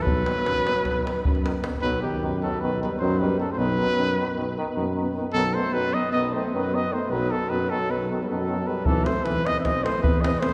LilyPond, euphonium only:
\new Staff \with { instrumentName = "Euphonium" } { \clef bass \time 9/8 \tempo 4. = 102 r8 dis8 r8 dis8 r8 dis8 r8 dis8 dis8 | dis8 dis8 dis8 dis8 dis8 dis8 dis8 dis8 dis8 | dis8 dis8 dis8 dis8 dis8 dis8 dis8 dis8 dis8 | dis8 dis8 dis8 dis8 dis8 dis8 dis8 dis8 dis8 |
dis8 dis8 dis8 dis8 dis8 dis8 dis8 dis8 dis8 | e8 e8 e8 e8 e8 e8 e8 e8 e8 | }